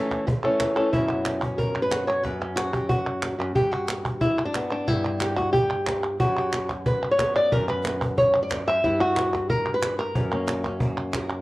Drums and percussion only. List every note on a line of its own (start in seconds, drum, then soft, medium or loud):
0.11 cajon bass medium
0.11 cajon slap soft
0.28 cajon bass loud
0.60 cajon bass medium
0.60 cajon slap medium
0.60 clap medium
0.93 cajon bass medium
1.25 cajon slap medium
1.25 clap medium
1.43 cajon bass medium
1.59 cajon bass medium
1.91 cajon slap medium
1.91 clap medium
2.25 cajon bass medium
2.25 cajon slap soft
2.57 cajon slap medium
2.57 clap medium
2.73 cajon bass medium
2.89 cajon bass medium
3.22 cajon slap medium
3.22 clap medium
3.56 cajon bass medium
3.88 cajon slap medium
3.88 clap medium
4.05 cajon bass medium
4.21 cajon bass medium
4.54 cajon slap medium
4.54 clap medium
4.88 cajon bass medium
5.20 cajon slap medium
5.20 clap medium
5.38 cajon bass medium
5.38 cajon slap soft
5.54 cajon bass medium
5.87 cajon bass medium
5.87 cajon slap loud
5.87 clap medium
6.20 cajon bass medium
6.53 cajon slap medium
6.53 clap medium
6.69 cajon bass medium
6.69 cajon slap soft
6.86 cajon bass medium
7.19 cajon bass medium
7.19 cajon slap loud
7.19 clap medium
7.52 cajon bass medium
7.85 cajon slap loud
7.85 clap medium
8.02 cajon bass medium
8.18 cajon bass medium
8.51 cajon bass medium
8.51 cajon slap loud
8.51 clap medium
8.84 cajon bass medium
8.84 cajon slap soft
9.17 cajon slap loud
9.17 clap medium
9.34 cajon bass medium
9.34 cajon slap soft
9.50 cajon bass medium
9.82 cajon slap medium
9.82 clap medium
10.15 cajon bass medium
10.48 cajon slap medium
10.48 clap medium
10.64 cajon bass medium
10.64 cajon slap soft
10.80 cajon bass medium
11.13 cajon bass medium
11.13 cajon slap medium
11.13 clap medium